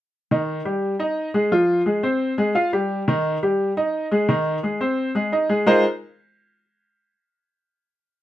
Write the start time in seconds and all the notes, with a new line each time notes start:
0.31 D#3 D#4
0.65 G3 G4
0.99 D#4 D#5
1.34 G#3 G#4
1.52 F3 F4
1.86 G#3 G#4
2.03 C4 C5
2.38 G#3 G#4
2.55 F4 F5
2.73 G3 G4
3.08 D#3 D#4
3.43 G3 G4
3.77 D#4 D#5
4.12 G#3 G#4
4.29 D#3 D#4
4.63 G#3 G#4
4.81 C4 C5
5.15 G#3 G#4
5.32 D#4 D#5
5.49 G#3 G#4
5.66 G#3 D#4 F4 G#4 A#4 C5